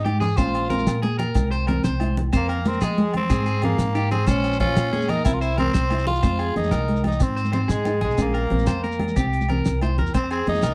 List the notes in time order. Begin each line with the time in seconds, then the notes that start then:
Already playing: G#2
0.05 D#4 G4, closed hi-hat, high conga, low agogo
0.20 G#4, closed hi-hat, low conga
0.37 A#1 C#4 F4 C5, kick, closed hi-hat, high conga, low agogo, shekere
0.54 closed hi-hat, low conga, low agogo
0.63 low conga
0.70 C4 A#4, closed hi-hat, high conga, low conga, shekere
0.79 shekere
0.87 A#2, snare, closed hi-hat, low agogo, shekere
0.95 low conga
1.02 A#3 G#4, closed hi-hat, high conga
1.19 A#4, closed hi-hat, low conga, low agogo
1.34 C2, muted clean electric guitar stroke, kick, closed hi-hat, high conga, low agogo, shekere
1.51 C5, closed hi-hat, low conga
1.67 C4 A#4, closed hi-hat, high conga, low conga, low agogo
1.84 C2 C5, snare, closed hi-hat, shekere
2.00 E4, closed hi-hat, high conga, low agogo
2.17 closed hi-hat, low conga
2.33 F2 A#3 C4 C5, kick, closed hi-hat, high conga, low agogo, shekere
2.49 A#4, closed hi-hat, low conga, low agogo
2.58 low conga
2.65 A#3 C4, closed hi-hat, high conga, low conga, shekere
2.73 shekere
2.81 F3 G#3 G#4, snare, closed hi-hat, low agogo, shekere
2.90 low conga
2.98 G#3, closed hi-hat, high conga
3.14 C4, closed hi-hat, low conga, low agogo
3.30 G#2 C4 G#4, kick, closed hi-hat, high conga, low agogo, shekere
3.46 G#4, closed hi-hat, low conga
3.62 A#3 C4, snare, closed hi-hat, high conga, low conga, low agogo
3.78 G#2, snare, closed hi-hat, shekere
3.95 D#4 G4, closed hi-hat, low agogo
4.11 C4 G#4, closed hi-hat, low conga
4.27 A#1 C#4 C5, kick, closed hi-hat, high conga, low agogo, shekere
4.44 closed hi-hat, low agogo, shekere
4.53 shekere
4.60 C#4 F4 C5, kick, closed hi-hat, high conga, low conga, shekere
4.68 low conga
4.76 A#2, snare, closed hi-hat, low agogo, shekere
4.93 A#3 G#4, closed hi-hat, high conga
5.01 shekere
5.08 D#4 A#4, closed hi-hat, low conga, low agogo
5.25 C2 C4 E4, kick, closed hi-hat, high conga, low agogo, shekere
5.33 F4, low conga
5.41 E4 C5, closed hi-hat, shekere
5.58 C4 A#4, closed hi-hat, high conga, low conga, low agogo
5.74 C2 C5, snare, closed hi-hat, shekere
5.83 low conga
5.90 E4, closed hi-hat, high conga, low conga, low agogo, shekere
5.99 shekere
6.07 F4, closed hi-hat, low conga
6.15 shekere
6.23 F2 C4 C5, kick, closed hi-hat, high conga, low conga, low agogo, shekere
6.39 G#4, closed hi-hat, low agogo
6.56 F2 A#3 D#4, closed hi-hat, low conga
6.64 high conga, shekere
6.71 C2 A#4, snare, closed hi-hat, low agogo, shekere
6.88 G#3, closed hi-hat
6.96 shekere
7.04 D#4, closed hi-hat, high conga, low conga, low agogo
7.12 shekere
7.20 G#2 C4, kick, closed hi-hat, low agogo, shekere
7.29 low conga
7.36 C5, closed hi-hat, shekere
7.45 high conga, shekere
7.53 C4 C5, closed hi-hat, low conga, low agogo, shekere
7.68 G#2 G#3 G#4, snare, closed hi-hat, shekere
7.85 D#4, closed hi-hat, high conga, low agogo, shekere
7.94 low conga
8.01 B1 G#3 G#4, closed hi-hat, low conga
8.11 shekere
8.18 A#1 A#3 C#4, kick, closed hi-hat, high conga, low conga, low agogo, shekere
8.34 A#4, closed hi-hat, low agogo
8.50 A#1 C4, closed hi-hat, low conga
8.59 high conga, shekere
8.67 F2 C5, snare, closed hi-hat, low agogo, shekere
8.84 A#3 A#4, closed hi-hat
8.92 shekere
8.99 closed hi-hat, high conga, low conga, low agogo
9.08 shekere
9.16 C2 C4 G4, kick, closed hi-hat, low agogo, shekere
9.25 low conga
9.33 closed hi-hat, shekere
9.41 high conga, shekere
9.49 C4 A#4, closed hi-hat, low conga, low agogo
9.65 C2, snare, closed hi-hat, shekere
9.81 E4 C5, closed hi-hat, high conga, low agogo, shekere
9.91 low conga
9.98 E2 A#4, closed hi-hat, low conga
10.06 shekere
10.14 F2 C4 C5, kick, closed hi-hat, high conga, low conga, low agogo, shekere
10.30 C4 G#4, closed hi-hat, low agogo
10.47 F2 A#3 D#4, closed hi-hat, low conga
10.55 high conga, shekere
10.62 C2 A#4, snare, closed hi-hat, low agogo, shekere